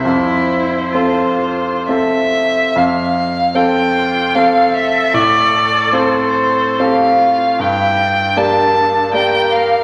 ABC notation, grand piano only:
X:1
M:3/4
L:1/8
Q:1/4=76
K:F
V:1 name="Grand piano"
F,,2 [CFA]2 [CFA]2 | F,,2 [CFA]2 [CFA]2 | A,,2 [CFA]2 [CFA]2 | G,,2 [B,Gd]2 [B,Gd]2 |]